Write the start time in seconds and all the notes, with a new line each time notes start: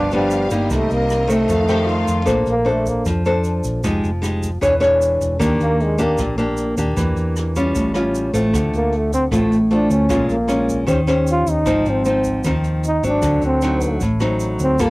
Already playing: G1 G2 B3 D4 G4 F5
0.11 F3 G3 B3 D4, closed hi-hat, shaker
0.30 closed hi-hat, shaker
0.50 G1 G3 A#3 D#4, closed hi-hat, shaker
0.69 C2 C3 C4 A#4 D#5, kick, cross-stick, closed hi-hat, shaker
0.74 A3
0.90 C2 A#3, closed hi-hat, shaker
1.10 cross-stick, closed hi-hat, shaker
1.27 D#3 A3 C4, closed hi-hat, shaker
1.32 A3
1.48 F2 D#4 A4 F5, kick, closed hi-hat, shaker
1.68 D#3 A3 C4 G4, cross-stick, closed hi-hat, shaker
1.80 G4
1.87 F4, closed hi-hat
2.08 F2, closed hi-hat, shaker
2.25 A#1 A#3 D4 A4 C5, kick, cross-stick, closed hi-hat, shaker
2.46 A#1 A#3, closed hi-hat, shaker
2.65 D4 A4 C5, closed hi-hat
2.71 A3
2.86 A#3, kick, closed hi-hat, shaker
3.05 F2 F3, kick, cross-stick, closed hi-hat, shaker
3.25 D4 A4 C5, closed hi-hat, shaker
3.44 closed hi-hat, shaker
3.64 A#1, kick, closed hi-hat, shaker
3.84 F1 F3 G#3 D#4 G4, kick, cross-stick, closed hi-hat, shaker
4.03 F1, closed hi-hat, shaker
4.22 G#3 D#4 G4, cross-stick, closed hi-hat, shaker
4.43 kick, closed hi-hat, shaker
4.61 E1 E3 D4 G#4 C#5, kick, closed hi-hat, shaker
4.80 D4 G#4 C#5, cross-stick, closed hi-hat, shaker
5.02 closed hi-hat, shaker
5.21 E1, kick, closed hi-hat, shaker
5.39 D#2 D#3 A#3 D4 G4, kick, cross-stick, closed hi-hat, shaker
5.60 D#2 A#3, closed hi-hat, shaker
5.80 G#3, closed hi-hat
5.98 A#3 D4 G4, kick, closed hi-hat, shaker
6.03 A#3
6.18 A#1 A#2, kick, cross-stick, closed hi-hat, shaker
6.38 A#3 D4 G4, closed hi-hat, shaker
6.57 closed hi-hat, shaker
6.77 D#2 A#3 D4 G4, kick, closed hi-hat, shaker
6.97 E2 E3, kick, cross-stick, closed hi-hat, shaker
7.16 E2, closed hi-hat, shaker
7.36 cross-stick, closed hi-hat, shaker
7.55 G3 C#4 F4, kick, closed hi-hat, shaker
7.75 A1 A2, kick, closed hi-hat, shaker
7.94 G3 C#4 F4, cross-stick, closed hi-hat, shaker
8.14 closed hi-hat, shaker
8.34 A1 A3 C4 F4, kick, closed hi-hat, shaker
8.53 D2 D3, kick, cross-stick, closed hi-hat, shaker
8.73 D2 A#3, closed hi-hat, shaker
8.92 closed hi-hat
8.97 A3
9.12 C4, kick, closed hi-hat, shaker
9.31 A1 A2 A3 C4 F4, kick, cross-stick, closed hi-hat, shaker
9.52 closed hi-hat, shaker
9.71 A3 C4 D4 F4, closed hi-hat
9.90 D2 C#4, kick, closed hi-hat, shaker
10.09 A#1 A#2 G#3 C#4 F4, kick, cross-stick, closed hi-hat, shaker
10.28 A#1 A#3, closed hi-hat, shaker
10.48 G#3 C#4 F4, cross-stick, closed hi-hat, shaker
10.68 kick, closed hi-hat, shaker
10.87 D#2 D#3 C#4 G4 C5, kick, closed hi-hat, shaker
11.07 C#4 G4 C5, cross-stick, closed hi-hat, shaker
11.27 closed hi-hat, shaker
11.32 F4
11.47 D#2 D#4, kick, closed hi-hat, shaker
11.66 G#1 G#2 F3 C4 D#4, kick, cross-stick, closed hi-hat, shaker
11.85 G#1, closed hi-hat, shaker
11.91 C4
12.05 F3 C4 D#4, closed hi-hat, shaker
12.24 kick, closed hi-hat, shaker
12.44 D#2 D#3 F3 C4 D#4, kick, cross-stick, closed hi-hat, shaker
12.64 closed hi-hat, shaker
12.83 closed hi-hat, shaker
12.87 D#4
13.03 G#1 F#3 C4, kick, closed hi-hat, shaker
13.07 D4
13.22 D2 D3, kick, cross-stick, closed hi-hat, shaker
13.41 D2, closed hi-hat, shaker
13.46 C4
13.61 F#3 C4 D#4, cross-stick, closed hi-hat, shaker
13.81 kick, closed hi-hat, shaker
14.00 A1 A2, kick, closed hi-hat, shaker
14.20 F#3 C4 D#4, cross-stick, closed hi-hat, shaker
14.40 closed hi-hat, shaker
14.59 D2 C4, kick, closed hi-hat, shaker
14.79 G1 G3 A#3 F4 A4 F5, kick, cross-stick, closed hi-hat, shaker